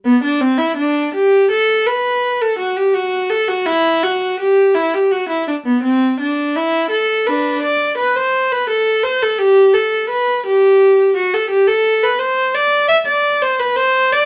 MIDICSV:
0, 0, Header, 1, 2, 480
1, 0, Start_track
1, 0, Key_signature, 1, "major"
1, 0, Tempo, 722022
1, 28, Time_signature, 4, 2, 24, 8
1, 4828, Tempo, 704225
1, 9594, End_track
2, 0, Start_track
2, 0, Title_t, "Viola"
2, 0, Program_c, 0, 41
2, 33, Note_on_c, 0, 59, 78
2, 143, Note_off_c, 0, 59, 0
2, 155, Note_on_c, 0, 62, 63
2, 270, Note_off_c, 0, 62, 0
2, 270, Note_on_c, 0, 60, 67
2, 383, Note_on_c, 0, 64, 64
2, 391, Note_off_c, 0, 60, 0
2, 508, Note_on_c, 0, 62, 68
2, 509, Note_off_c, 0, 64, 0
2, 751, Note_off_c, 0, 62, 0
2, 759, Note_on_c, 0, 67, 73
2, 996, Note_off_c, 0, 67, 0
2, 1000, Note_on_c, 0, 69, 76
2, 1235, Note_off_c, 0, 69, 0
2, 1241, Note_on_c, 0, 71, 69
2, 1597, Note_off_c, 0, 71, 0
2, 1604, Note_on_c, 0, 69, 66
2, 1716, Note_on_c, 0, 66, 61
2, 1719, Note_off_c, 0, 69, 0
2, 1832, Note_off_c, 0, 66, 0
2, 1839, Note_on_c, 0, 67, 69
2, 1953, Note_on_c, 0, 66, 68
2, 1956, Note_off_c, 0, 67, 0
2, 2190, Note_on_c, 0, 69, 69
2, 2193, Note_off_c, 0, 66, 0
2, 2311, Note_on_c, 0, 66, 64
2, 2312, Note_off_c, 0, 69, 0
2, 2431, Note_on_c, 0, 64, 78
2, 2433, Note_off_c, 0, 66, 0
2, 2673, Note_off_c, 0, 64, 0
2, 2677, Note_on_c, 0, 66, 65
2, 2918, Note_off_c, 0, 66, 0
2, 2921, Note_on_c, 0, 67, 73
2, 3155, Note_off_c, 0, 67, 0
2, 3155, Note_on_c, 0, 64, 70
2, 3275, Note_off_c, 0, 64, 0
2, 3282, Note_on_c, 0, 67, 67
2, 3398, Note_off_c, 0, 67, 0
2, 3399, Note_on_c, 0, 66, 68
2, 3515, Note_on_c, 0, 64, 58
2, 3516, Note_off_c, 0, 66, 0
2, 3630, Note_off_c, 0, 64, 0
2, 3642, Note_on_c, 0, 62, 60
2, 3687, Note_off_c, 0, 62, 0
2, 3762, Note_on_c, 0, 59, 59
2, 3874, Note_off_c, 0, 59, 0
2, 3874, Note_on_c, 0, 60, 71
2, 4108, Note_off_c, 0, 60, 0
2, 4119, Note_on_c, 0, 62, 66
2, 4350, Note_off_c, 0, 62, 0
2, 4358, Note_on_c, 0, 64, 70
2, 4587, Note_on_c, 0, 69, 66
2, 4593, Note_off_c, 0, 64, 0
2, 4820, Note_off_c, 0, 69, 0
2, 4830, Note_on_c, 0, 62, 50
2, 4830, Note_on_c, 0, 71, 62
2, 5052, Note_off_c, 0, 62, 0
2, 5069, Note_off_c, 0, 71, 0
2, 5072, Note_on_c, 0, 74, 71
2, 5307, Note_off_c, 0, 74, 0
2, 5313, Note_on_c, 0, 71, 68
2, 5430, Note_off_c, 0, 71, 0
2, 5437, Note_on_c, 0, 72, 68
2, 5678, Note_off_c, 0, 72, 0
2, 5683, Note_on_c, 0, 71, 73
2, 5801, Note_off_c, 0, 71, 0
2, 5803, Note_on_c, 0, 69, 69
2, 6035, Note_on_c, 0, 72, 74
2, 6037, Note_off_c, 0, 69, 0
2, 6157, Note_off_c, 0, 72, 0
2, 6165, Note_on_c, 0, 69, 67
2, 6274, Note_on_c, 0, 67, 79
2, 6282, Note_off_c, 0, 69, 0
2, 6514, Note_on_c, 0, 69, 65
2, 6518, Note_off_c, 0, 67, 0
2, 6758, Note_on_c, 0, 71, 76
2, 6759, Note_off_c, 0, 69, 0
2, 6996, Note_off_c, 0, 71, 0
2, 7006, Note_on_c, 0, 67, 73
2, 7471, Note_off_c, 0, 67, 0
2, 7486, Note_on_c, 0, 66, 66
2, 7598, Note_off_c, 0, 66, 0
2, 7605, Note_on_c, 0, 69, 73
2, 7715, Note_on_c, 0, 67, 81
2, 7719, Note_off_c, 0, 69, 0
2, 7830, Note_off_c, 0, 67, 0
2, 7833, Note_on_c, 0, 69, 77
2, 8069, Note_off_c, 0, 69, 0
2, 8077, Note_on_c, 0, 71, 70
2, 8185, Note_on_c, 0, 72, 75
2, 8191, Note_off_c, 0, 71, 0
2, 8422, Note_off_c, 0, 72, 0
2, 8429, Note_on_c, 0, 74, 78
2, 8658, Note_on_c, 0, 76, 83
2, 8662, Note_off_c, 0, 74, 0
2, 8706, Note_off_c, 0, 76, 0
2, 8779, Note_on_c, 0, 74, 72
2, 9011, Note_off_c, 0, 74, 0
2, 9024, Note_on_c, 0, 72, 75
2, 9138, Note_off_c, 0, 72, 0
2, 9140, Note_on_c, 0, 71, 76
2, 9256, Note_on_c, 0, 72, 83
2, 9257, Note_off_c, 0, 71, 0
2, 9504, Note_off_c, 0, 72, 0
2, 9505, Note_on_c, 0, 74, 79
2, 9594, Note_off_c, 0, 74, 0
2, 9594, End_track
0, 0, End_of_file